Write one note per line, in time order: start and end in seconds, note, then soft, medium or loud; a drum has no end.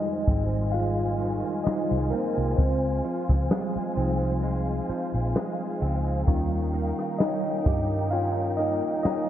0.00 2.58 F2 medium
0.00 1.19 D#3 medium
0.00 2.61 G3 medium
0.00 0.73 G#3 medium
0.00 2.60 G#3 soft
0.00 1.67 D#4 medium
0.00 6.24 F4 medium
0.00 6.24 C5 medium
0.00 0.76 D#5 medium
0.00 2.55 D#5 medium
0.00 6.24 G#5 medium
0.27 1.41 G#1 medium
0.27 2.12 C4 medium
0.27 kick loud
0.27 closed hi-hat medium
0.72 1.66 G#3 medium
0.72 1.63 F4 medium
0.72 1.68 F5 loud
0.72 closed hi-hat medium
1.20 2.68 D#3 medium
1.20 closed hi-hat medium
1.64 3.50 G#3 medium
1.64 2.10 D#4 medium
1.64 2.13 D#5 medium
1.64 muted fingered electric bass stroke soft
1.64 snare loud
1.64 closed hi-hat medium
1.91 2.10 C2 medium
2.10 2.56 A#3 medium
2.10 3.96 C4 medium
2.10 2.59 A#4 medium
2.10 closed hi-hat medium
2.37 2.56 C2 medium
2.56 3.00 C#2 loud
2.56 3.47 C4 medium
2.56 3.46 C5 medium
2.56 9.29 F5 medium
2.56 kick loud
2.56 closed hi-hat medium
3.04 4.88 F3 medium
3.04 closed hi-hat medium
3.29 3.49 C#2 medium
3.29 kick medium
3.29 cross-stick medium
3.51 4.42 G#3 medium
3.51 snare loud
3.51 closed hi-hat medium
3.76 muted fingered electric bass stroke soft
3.96 4.79 C2 medium
3.96 4.59 F3 medium
3.96 5.80 C4 medium
3.96 4.60 C4 soft
3.96 4.60 D#4 medium
3.96 closed hi-hat medium
4.43 5.34 G#3 medium
4.43 closed hi-hat medium
4.89 6.27 F3 medium
4.89 muted fingered electric bass stroke soft
4.89 closed hi-hat medium
5.14 5.33 A#1 medium
5.35 6.38 G#3 medium
5.35 snare loud
5.35 closed hi-hat medium
5.81 6.23 C#2 medium
5.81 6.38 C4 medium
5.81 closed hi-hat medium
6.27 6.91 D#2 loud
6.27 9.29 D#3 medium
6.27 6.90 G3 medium
6.27 6.91 C#4 medium
6.27 9.29 D#4 medium
6.27 6.91 F4 medium
6.27 9.29 A#4 medium
6.27 9.29 G5 medium
6.27 kick loud
6.27 closed hi-hat medium
6.74 8.58 A#3 medium
6.74 closed hi-hat medium
6.99 cross-stick medium
7.19 8.11 C#4 medium
7.19 8.09 D#4 medium
7.19 8.14 D#5 medium
7.19 snare loud
7.19 closed hi-hat medium
7.66 8.80 G2 medium
7.66 9.29 G4 medium
7.66 kick loud
7.66 closed hi-hat medium
8.11 9.03 C#4 medium
8.11 8.56 F4 medium
8.11 8.59 F5 loud
8.11 closed hi-hat medium
8.57 9.29 A#3 medium
8.57 8.80 D#4 medium
8.57 8.78 D#5 loud
8.57 closed hi-hat medium
9.03 9.29 C#4 medium
9.03 9.29 D#4 medium
9.03 9.29 D#5 loud
9.03 muted fingered electric bass stroke soft
9.03 snare loud
9.03 closed hi-hat medium